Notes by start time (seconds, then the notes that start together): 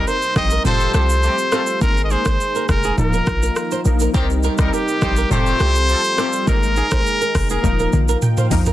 Already playing: C3 G3 A#3 C4 D#4 A#4
0.07 A#4 C5, shaker
0.22 shaker
0.36 A#1 G3 D#4 G4 C5 D#5, kick, cross-stick, shaker
0.50 A#4, shaker
0.64 F1 F3 G3 A3 C4 F4 G4 A4 C5, mid tom, shaker
0.80 shaker
0.94 C2 G4 C5, cross-stick, shaker
1.10 shaker
1.23 C3 A3 G4, shaker
1.38 shaker
1.51 C3 G3 A3 C4 F4 A4, cross-stick, shaker
1.67 shaker
1.80 G#1 D#3 G#3 A#3 D#4 G#4 A#4, kick, shaker
1.97 shaker
2.04 D#5
2.10 G#4 C5, shaker
2.25 G#1 C5, kick, cross-stick, shaker
2.41 shaker
2.55 A#4, shaker
2.69 F1 A#4, kick, cross-stick, shaker
2.83 G#4, shaker
2.97 D#1 D#3 F3 A#3 D#4 F4 A#4, mid tom, shaker
3.13 A#4, shaker
3.27 A#1, kick, cross-stick, shaker
3.43 A#4, shaker
3.56 cross-stick, shaker
3.71 C5, shaker
3.84 A#1 F3 A#3 D#4 A#4, shaker
4.00 A#4, shaker
4.13 C2 C3 D#3 G3 A#3 C4 D#4 G4 A#4 C5, kick, shaker
4.30 shaker
4.43 A#4, shaker
4.58 C2 G3 D#4 A#4, kick, cross-stick, shaker
4.67 A#4
4.73 G4 A#4, shaker
4.88 shaker
5.02 A#1 G3 D#4 G4 C5, kick, cross-stick, shaker
5.16 A#4, shaker
5.30 F1 C3 F3 G3 A3 C4 F4 G4 A4 C5, mid tom, shaker
5.46 shaker
5.60 C2 G4, cross-stick, shaker
5.76 shaker
5.89 F3 C4 A4, shaker
6.04 shaker
6.17 C3 G3 A3 C4 F4 G4 A4, cross-stick, shaker
6.33 shaker
6.46 G#1 D#3 G#3 A#3 D#4 G#4 A#4, kick, shaker
6.63 shaker
6.76 G#4, shaker
6.91 G#1 C5, kick, cross-stick, shaker
7.07 shaker
7.21 A#4, shaker
7.35 F1, kick, cross-stick, open hi-hat, shaker
7.49 G#4 A#4, shaker
7.63 D#1 F3 A#3 D#4 F4 A#4, kick, high tom, shaker
7.79 A#4, shaker
7.93 A#1, mid tom, shaker
8.09 A#4, shaker
8.22 G5, mid tom, shaker
8.37 C5 F5, mid tom, shaker
8.50 A#1 F3 A#3 D#4 A#4 D#5, floor tom, open hi-hat, shaker
8.66 A#4, floor tom, shaker